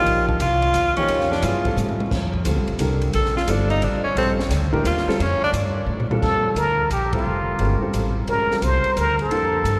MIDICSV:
0, 0, Header, 1, 7, 480
1, 0, Start_track
1, 0, Key_signature, -2, "major"
1, 0, Tempo, 342466
1, 88, Time_signature, 3, 2, 24, 8
1, 13731, End_track
2, 0, Start_track
2, 0, Title_t, "Muted trumpet"
2, 0, Program_c, 0, 59
2, 8716, Note_on_c, 0, 69, 97
2, 9204, Note_on_c, 0, 70, 100
2, 9225, Note_off_c, 0, 69, 0
2, 9683, Note_off_c, 0, 70, 0
2, 9699, Note_on_c, 0, 67, 83
2, 9981, Note_off_c, 0, 67, 0
2, 10023, Note_on_c, 0, 65, 72
2, 10915, Note_off_c, 0, 65, 0
2, 11625, Note_on_c, 0, 70, 93
2, 12101, Note_on_c, 0, 72, 101
2, 12122, Note_off_c, 0, 70, 0
2, 12594, Note_on_c, 0, 70, 92
2, 12615, Note_off_c, 0, 72, 0
2, 12893, Note_off_c, 0, 70, 0
2, 12912, Note_on_c, 0, 69, 85
2, 13731, Note_off_c, 0, 69, 0
2, 13731, End_track
3, 0, Start_track
3, 0, Title_t, "Grand piano"
3, 0, Program_c, 1, 0
3, 0, Note_on_c, 1, 53, 75
3, 0, Note_on_c, 1, 58, 73
3, 0, Note_on_c, 1, 63, 71
3, 0, Note_on_c, 1, 67, 84
3, 541, Note_off_c, 1, 58, 0
3, 541, Note_off_c, 1, 63, 0
3, 543, Note_off_c, 1, 53, 0
3, 546, Note_off_c, 1, 67, 0
3, 1362, Note_on_c, 1, 63, 64
3, 1363, Note_on_c, 1, 53, 80
3, 1368, Note_on_c, 1, 67, 81
3, 1370, Note_on_c, 1, 58, 71
3, 1974, Note_off_c, 1, 63, 0
3, 1975, Note_off_c, 1, 53, 0
3, 1977, Note_off_c, 1, 67, 0
3, 1978, Note_off_c, 1, 58, 0
3, 2003, Note_on_c, 1, 54, 64
3, 2005, Note_on_c, 1, 64, 57
3, 2006, Note_on_c, 1, 59, 55
3, 2006, Note_on_c, 1, 68, 70
3, 2285, Note_off_c, 1, 54, 0
3, 2286, Note_off_c, 1, 64, 0
3, 2287, Note_off_c, 1, 59, 0
3, 2287, Note_off_c, 1, 68, 0
3, 2316, Note_on_c, 1, 55, 67
3, 2316, Note_on_c, 1, 60, 59
3, 2320, Note_on_c, 1, 65, 61
3, 2320, Note_on_c, 1, 69, 76
3, 2734, Note_off_c, 1, 55, 0
3, 2734, Note_off_c, 1, 60, 0
3, 2736, Note_off_c, 1, 65, 0
3, 2736, Note_off_c, 1, 69, 0
3, 3440, Note_on_c, 1, 55, 64
3, 3443, Note_on_c, 1, 60, 60
3, 3448, Note_on_c, 1, 69, 68
3, 3449, Note_on_c, 1, 65, 59
3, 3905, Note_off_c, 1, 55, 0
3, 3907, Note_off_c, 1, 60, 0
3, 3908, Note_off_c, 1, 69, 0
3, 3910, Note_off_c, 1, 65, 0
3, 3929, Note_on_c, 1, 69, 60
3, 3931, Note_on_c, 1, 67, 57
3, 3936, Note_on_c, 1, 70, 69
3, 3940, Note_on_c, 1, 62, 58
3, 4655, Note_off_c, 1, 69, 0
3, 4657, Note_off_c, 1, 67, 0
3, 4659, Note_off_c, 1, 70, 0
3, 4661, Note_off_c, 1, 62, 0
3, 4879, Note_on_c, 1, 55, 76
3, 4882, Note_on_c, 1, 69, 84
3, 4885, Note_on_c, 1, 60, 66
3, 4886, Note_on_c, 1, 65, 67
3, 5610, Note_off_c, 1, 55, 0
3, 5612, Note_off_c, 1, 69, 0
3, 5613, Note_off_c, 1, 60, 0
3, 5614, Note_off_c, 1, 65, 0
3, 5842, Note_on_c, 1, 55, 76
3, 5845, Note_on_c, 1, 65, 68
3, 5846, Note_on_c, 1, 69, 84
3, 5848, Note_on_c, 1, 60, 69
3, 6123, Note_off_c, 1, 55, 0
3, 6124, Note_off_c, 1, 65, 0
3, 6125, Note_off_c, 1, 69, 0
3, 6126, Note_off_c, 1, 60, 0
3, 6619, Note_on_c, 1, 62, 77
3, 6622, Note_on_c, 1, 57, 80
3, 6626, Note_on_c, 1, 67, 80
3, 6626, Note_on_c, 1, 70, 97
3, 6777, Note_off_c, 1, 62, 0
3, 6779, Note_off_c, 1, 57, 0
3, 6780, Note_off_c, 1, 67, 0
3, 6781, Note_off_c, 1, 70, 0
3, 7114, Note_on_c, 1, 55, 85
3, 7119, Note_on_c, 1, 65, 77
3, 7121, Note_on_c, 1, 60, 77
3, 7122, Note_on_c, 1, 69, 92
3, 7264, Note_off_c, 1, 55, 0
3, 7267, Note_off_c, 1, 65, 0
3, 7268, Note_off_c, 1, 60, 0
3, 7268, Note_off_c, 1, 69, 0
3, 8555, Note_on_c, 1, 46, 75
3, 8559, Note_on_c, 1, 55, 68
3, 8560, Note_on_c, 1, 65, 66
3, 8561, Note_on_c, 1, 69, 81
3, 8564, Note_on_c, 1, 60, 65
3, 9169, Note_off_c, 1, 46, 0
3, 9171, Note_off_c, 1, 55, 0
3, 9171, Note_off_c, 1, 65, 0
3, 9172, Note_off_c, 1, 69, 0
3, 9173, Note_off_c, 1, 60, 0
3, 9996, Note_on_c, 1, 55, 64
3, 10003, Note_on_c, 1, 60, 62
3, 10005, Note_on_c, 1, 65, 61
3, 10007, Note_on_c, 1, 69, 73
3, 10611, Note_off_c, 1, 55, 0
3, 10614, Note_off_c, 1, 60, 0
3, 10615, Note_off_c, 1, 65, 0
3, 10616, Note_off_c, 1, 69, 0
3, 10649, Note_on_c, 1, 66, 58
3, 10650, Note_on_c, 1, 56, 66
3, 10651, Note_on_c, 1, 61, 57
3, 10651, Note_on_c, 1, 70, 71
3, 10927, Note_off_c, 1, 66, 0
3, 10928, Note_off_c, 1, 56, 0
3, 10929, Note_off_c, 1, 61, 0
3, 10929, Note_off_c, 1, 70, 0
3, 10952, Note_on_c, 1, 60, 65
3, 10955, Note_on_c, 1, 65, 61
3, 10955, Note_on_c, 1, 69, 72
3, 10956, Note_on_c, 1, 55, 66
3, 11373, Note_off_c, 1, 60, 0
3, 11374, Note_off_c, 1, 65, 0
3, 11374, Note_off_c, 1, 69, 0
3, 11375, Note_off_c, 1, 55, 0
3, 11613, Note_on_c, 1, 66, 55
3, 11617, Note_on_c, 1, 56, 60
3, 11617, Note_on_c, 1, 61, 53
3, 11623, Note_on_c, 1, 70, 63
3, 11891, Note_off_c, 1, 66, 0
3, 11893, Note_off_c, 1, 56, 0
3, 11893, Note_off_c, 1, 61, 0
3, 11896, Note_off_c, 1, 70, 0
3, 11923, Note_on_c, 1, 55, 52
3, 11926, Note_on_c, 1, 65, 50
3, 11927, Note_on_c, 1, 60, 53
3, 11928, Note_on_c, 1, 69, 60
3, 12950, Note_off_c, 1, 55, 0
3, 12952, Note_off_c, 1, 60, 0
3, 12952, Note_off_c, 1, 65, 0
3, 12953, Note_off_c, 1, 69, 0
3, 13053, Note_on_c, 1, 69, 67
3, 13056, Note_on_c, 1, 62, 59
3, 13058, Note_on_c, 1, 67, 58
3, 13070, Note_on_c, 1, 58, 70
3, 13731, Note_off_c, 1, 58, 0
3, 13731, Note_off_c, 1, 62, 0
3, 13731, Note_off_c, 1, 67, 0
3, 13731, Note_off_c, 1, 69, 0
3, 13731, End_track
4, 0, Start_track
4, 0, Title_t, "Tenor saxophone"
4, 0, Program_c, 2, 66
4, 0, Note_on_c, 2, 65, 110
4, 363, Note_off_c, 2, 65, 0
4, 401, Note_on_c, 2, 62, 56
4, 585, Note_on_c, 2, 65, 112
4, 606, Note_off_c, 2, 62, 0
4, 1348, Note_off_c, 2, 65, 0
4, 1357, Note_on_c, 2, 61, 93
4, 1843, Note_on_c, 2, 62, 84
4, 1864, Note_off_c, 2, 61, 0
4, 2027, Note_on_c, 2, 65, 91
4, 2048, Note_off_c, 2, 62, 0
4, 2496, Note_off_c, 2, 65, 0
4, 4417, Note_on_c, 2, 69, 86
4, 4701, Note_off_c, 2, 69, 0
4, 4722, Note_on_c, 2, 65, 87
4, 4911, Note_on_c, 2, 62, 84
4, 4933, Note_off_c, 2, 65, 0
4, 5181, Note_off_c, 2, 62, 0
4, 5189, Note_on_c, 2, 63, 103
4, 5378, Note_on_c, 2, 62, 85
4, 5399, Note_off_c, 2, 63, 0
4, 5652, Note_off_c, 2, 62, 0
4, 5660, Note_on_c, 2, 61, 88
4, 5823, Note_off_c, 2, 61, 0
4, 5863, Note_on_c, 2, 60, 89
4, 6044, Note_off_c, 2, 60, 0
4, 6821, Note_on_c, 2, 65, 81
4, 7314, Note_on_c, 2, 61, 86
4, 7335, Note_off_c, 2, 65, 0
4, 7609, Note_off_c, 2, 61, 0
4, 7622, Note_on_c, 2, 62, 104
4, 7714, Note_off_c, 2, 62, 0
4, 13731, End_track
5, 0, Start_track
5, 0, Title_t, "Upright bass"
5, 0, Program_c, 3, 32
5, 84, Note_on_c, 3, 34, 81
5, 547, Note_off_c, 3, 34, 0
5, 555, Note_on_c, 3, 36, 94
5, 1027, Note_off_c, 3, 36, 0
5, 1038, Note_on_c, 3, 39, 92
5, 1333, Note_off_c, 3, 39, 0
5, 1518, Note_on_c, 3, 41, 80
5, 1985, Note_off_c, 3, 41, 0
5, 1993, Note_on_c, 3, 43, 93
5, 2465, Note_off_c, 3, 43, 0
5, 2473, Note_on_c, 3, 45, 92
5, 2944, Note_off_c, 3, 45, 0
5, 2956, Note_on_c, 3, 41, 82
5, 3426, Note_off_c, 3, 41, 0
5, 3435, Note_on_c, 3, 38, 88
5, 3589, Note_off_c, 3, 38, 0
5, 3589, Note_on_c, 3, 34, 57
5, 3749, Note_off_c, 3, 34, 0
5, 3758, Note_on_c, 3, 33, 66
5, 3900, Note_off_c, 3, 33, 0
5, 3908, Note_on_c, 3, 36, 91
5, 4381, Note_off_c, 3, 36, 0
5, 4400, Note_on_c, 3, 34, 78
5, 4867, Note_off_c, 3, 34, 0
5, 4874, Note_on_c, 3, 31, 95
5, 5343, Note_off_c, 3, 31, 0
5, 5356, Note_on_c, 3, 33, 90
5, 5649, Note_off_c, 3, 33, 0
5, 5824, Note_on_c, 3, 34, 84
5, 6290, Note_off_c, 3, 34, 0
5, 6298, Note_on_c, 3, 38, 98
5, 6775, Note_off_c, 3, 38, 0
5, 6788, Note_on_c, 3, 39, 91
5, 7084, Note_off_c, 3, 39, 0
5, 7278, Note_on_c, 3, 41, 85
5, 7569, Note_off_c, 3, 41, 0
5, 7743, Note_on_c, 3, 43, 97
5, 8211, Note_off_c, 3, 43, 0
5, 8219, Note_on_c, 3, 45, 98
5, 8695, Note_off_c, 3, 45, 0
5, 8718, Note_on_c, 3, 41, 76
5, 9166, Note_off_c, 3, 41, 0
5, 9175, Note_on_c, 3, 38, 88
5, 9654, Note_off_c, 3, 38, 0
5, 9666, Note_on_c, 3, 34, 80
5, 10140, Note_off_c, 3, 34, 0
5, 10148, Note_on_c, 3, 29, 73
5, 10622, Note_off_c, 3, 29, 0
5, 10643, Note_on_c, 3, 31, 88
5, 10934, Note_off_c, 3, 31, 0
5, 11125, Note_on_c, 3, 33, 89
5, 11591, Note_off_c, 3, 33, 0
5, 11600, Note_on_c, 3, 34, 76
5, 12069, Note_off_c, 3, 34, 0
5, 12080, Note_on_c, 3, 36, 84
5, 12374, Note_off_c, 3, 36, 0
5, 12566, Note_on_c, 3, 38, 86
5, 13029, Note_off_c, 3, 38, 0
5, 13037, Note_on_c, 3, 41, 70
5, 13500, Note_off_c, 3, 41, 0
5, 13509, Note_on_c, 3, 43, 85
5, 13731, Note_off_c, 3, 43, 0
5, 13731, End_track
6, 0, Start_track
6, 0, Title_t, "Muted upright bass strokes"
6, 1353, Note_on_c, 9, 29, 43
6, 1493, Note_off_c, 9, 29, 0
6, 5672, Note_on_c, 9, 29, 43
6, 5813, Note_off_c, 9, 29, 0
6, 7108, Note_on_c, 9, 29, 45
6, 7248, Note_off_c, 9, 29, 0
6, 7579, Note_on_c, 9, 29, 42
6, 7719, Note_off_c, 9, 29, 0
6, 10959, Note_on_c, 9, 29, 39
6, 11099, Note_off_c, 9, 29, 0
6, 12409, Note_on_c, 9, 29, 39
6, 12549, Note_off_c, 9, 29, 0
6, 13731, End_track
7, 0, Start_track
7, 0, Title_t, "Drums"
7, 89, Note_on_c, 9, 51, 64
7, 229, Note_off_c, 9, 51, 0
7, 401, Note_on_c, 9, 36, 68
7, 541, Note_off_c, 9, 36, 0
7, 559, Note_on_c, 9, 44, 60
7, 559, Note_on_c, 9, 51, 77
7, 700, Note_off_c, 9, 44, 0
7, 700, Note_off_c, 9, 51, 0
7, 872, Note_on_c, 9, 51, 48
7, 1012, Note_off_c, 9, 51, 0
7, 1034, Note_on_c, 9, 44, 59
7, 1034, Note_on_c, 9, 51, 66
7, 1174, Note_off_c, 9, 44, 0
7, 1174, Note_off_c, 9, 51, 0
7, 1353, Note_on_c, 9, 51, 51
7, 1494, Note_off_c, 9, 51, 0
7, 1519, Note_on_c, 9, 51, 73
7, 1659, Note_off_c, 9, 51, 0
7, 1688, Note_on_c, 9, 38, 29
7, 1829, Note_off_c, 9, 38, 0
7, 1850, Note_on_c, 9, 38, 45
7, 1990, Note_off_c, 9, 38, 0
7, 1996, Note_on_c, 9, 44, 70
7, 1996, Note_on_c, 9, 51, 75
7, 2136, Note_off_c, 9, 44, 0
7, 2136, Note_off_c, 9, 51, 0
7, 2313, Note_on_c, 9, 51, 47
7, 2317, Note_on_c, 9, 36, 57
7, 2453, Note_off_c, 9, 51, 0
7, 2457, Note_off_c, 9, 36, 0
7, 2486, Note_on_c, 9, 44, 57
7, 2493, Note_on_c, 9, 47, 51
7, 2626, Note_off_c, 9, 44, 0
7, 2633, Note_off_c, 9, 47, 0
7, 2646, Note_on_c, 9, 47, 65
7, 2786, Note_off_c, 9, 47, 0
7, 2809, Note_on_c, 9, 47, 90
7, 2949, Note_off_c, 9, 47, 0
7, 2964, Note_on_c, 9, 36, 81
7, 2970, Note_on_c, 9, 38, 43
7, 2970, Note_on_c, 9, 49, 83
7, 3104, Note_off_c, 9, 36, 0
7, 3110, Note_off_c, 9, 38, 0
7, 3110, Note_off_c, 9, 49, 0
7, 3274, Note_on_c, 9, 36, 55
7, 3414, Note_off_c, 9, 36, 0
7, 3434, Note_on_c, 9, 44, 65
7, 3434, Note_on_c, 9, 51, 81
7, 3575, Note_off_c, 9, 44, 0
7, 3575, Note_off_c, 9, 51, 0
7, 3749, Note_on_c, 9, 51, 46
7, 3889, Note_off_c, 9, 51, 0
7, 3910, Note_on_c, 9, 44, 69
7, 3910, Note_on_c, 9, 51, 79
7, 4050, Note_off_c, 9, 44, 0
7, 4050, Note_off_c, 9, 51, 0
7, 4226, Note_on_c, 9, 51, 49
7, 4366, Note_off_c, 9, 51, 0
7, 4392, Note_on_c, 9, 51, 70
7, 4533, Note_off_c, 9, 51, 0
7, 4561, Note_on_c, 9, 38, 28
7, 4701, Note_off_c, 9, 38, 0
7, 4723, Note_on_c, 9, 38, 46
7, 4863, Note_off_c, 9, 38, 0
7, 4871, Note_on_c, 9, 44, 62
7, 4871, Note_on_c, 9, 51, 79
7, 5011, Note_off_c, 9, 44, 0
7, 5011, Note_off_c, 9, 51, 0
7, 5187, Note_on_c, 9, 51, 49
7, 5327, Note_off_c, 9, 51, 0
7, 5353, Note_on_c, 9, 51, 65
7, 5493, Note_off_c, 9, 51, 0
7, 5841, Note_on_c, 9, 51, 67
7, 5981, Note_off_c, 9, 51, 0
7, 6161, Note_on_c, 9, 38, 55
7, 6301, Note_off_c, 9, 38, 0
7, 6315, Note_on_c, 9, 44, 64
7, 6315, Note_on_c, 9, 51, 79
7, 6322, Note_on_c, 9, 38, 41
7, 6455, Note_off_c, 9, 44, 0
7, 6455, Note_off_c, 9, 51, 0
7, 6462, Note_off_c, 9, 38, 0
7, 6637, Note_on_c, 9, 36, 62
7, 6777, Note_off_c, 9, 36, 0
7, 6801, Note_on_c, 9, 44, 66
7, 6801, Note_on_c, 9, 51, 77
7, 6941, Note_off_c, 9, 44, 0
7, 6941, Note_off_c, 9, 51, 0
7, 6972, Note_on_c, 9, 38, 31
7, 7112, Note_off_c, 9, 38, 0
7, 7134, Note_on_c, 9, 38, 48
7, 7274, Note_off_c, 9, 38, 0
7, 7291, Note_on_c, 9, 51, 70
7, 7431, Note_off_c, 9, 51, 0
7, 7759, Note_on_c, 9, 44, 70
7, 7759, Note_on_c, 9, 51, 77
7, 7899, Note_off_c, 9, 44, 0
7, 7899, Note_off_c, 9, 51, 0
7, 8407, Note_on_c, 9, 43, 68
7, 8548, Note_off_c, 9, 43, 0
7, 8565, Note_on_c, 9, 43, 89
7, 8706, Note_off_c, 9, 43, 0
7, 8725, Note_on_c, 9, 36, 68
7, 8728, Note_on_c, 9, 49, 70
7, 8865, Note_off_c, 9, 36, 0
7, 8868, Note_off_c, 9, 49, 0
7, 9197, Note_on_c, 9, 44, 63
7, 9197, Note_on_c, 9, 51, 66
7, 9337, Note_off_c, 9, 44, 0
7, 9337, Note_off_c, 9, 51, 0
7, 9679, Note_on_c, 9, 44, 58
7, 9679, Note_on_c, 9, 51, 68
7, 9819, Note_off_c, 9, 44, 0
7, 9819, Note_off_c, 9, 51, 0
7, 9990, Note_on_c, 9, 51, 71
7, 9994, Note_on_c, 9, 36, 80
7, 10130, Note_off_c, 9, 51, 0
7, 10134, Note_off_c, 9, 36, 0
7, 10635, Note_on_c, 9, 51, 59
7, 10775, Note_off_c, 9, 51, 0
7, 11122, Note_on_c, 9, 44, 51
7, 11122, Note_on_c, 9, 51, 65
7, 11263, Note_off_c, 9, 44, 0
7, 11263, Note_off_c, 9, 51, 0
7, 11598, Note_on_c, 9, 51, 59
7, 11739, Note_off_c, 9, 51, 0
7, 11928, Note_on_c, 9, 38, 37
7, 12068, Note_off_c, 9, 38, 0
7, 12083, Note_on_c, 9, 44, 62
7, 12083, Note_on_c, 9, 51, 66
7, 12224, Note_off_c, 9, 44, 0
7, 12224, Note_off_c, 9, 51, 0
7, 12389, Note_on_c, 9, 51, 43
7, 12529, Note_off_c, 9, 51, 0
7, 12567, Note_on_c, 9, 44, 52
7, 12567, Note_on_c, 9, 51, 60
7, 12707, Note_off_c, 9, 44, 0
7, 12707, Note_off_c, 9, 51, 0
7, 12880, Note_on_c, 9, 51, 43
7, 13020, Note_off_c, 9, 51, 0
7, 13049, Note_on_c, 9, 51, 58
7, 13189, Note_off_c, 9, 51, 0
7, 13528, Note_on_c, 9, 44, 60
7, 13528, Note_on_c, 9, 51, 63
7, 13668, Note_off_c, 9, 44, 0
7, 13668, Note_off_c, 9, 51, 0
7, 13731, End_track
0, 0, End_of_file